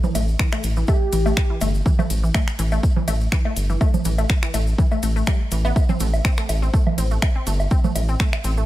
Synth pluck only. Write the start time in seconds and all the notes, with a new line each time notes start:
0.04 E3
0.15 A3
0.39 E3
0.53 A3
0.77 E3
0.88 A3
1.13 E3
1.26 A3
1.50 E3
1.61 A3
1.86 E3
1.99 A3
2.23 E3
2.35 A3
2.59 E3
2.72 A3
2.96 E3
3.08 A3
3.32 E3
3.45 A3
3.70 E3
3.81 A3
4.05 E3
4.18 A3
4.43 E3
4.54 A3
4.78 E3
4.92 A3
5.03 A3
5.16 A3
5.27 G3
5.52 E3
5.65 B3
5.89 C4
6.00 A3
6.25 C4
6.38 A3
6.62 C4
6.74 A3
6.98 C4
7.11 A3
7.35 C4
7.47 A3
7.71 C4
7.84 A3
8.09 C4
8.20 A3
8.44 C4
8.57 A3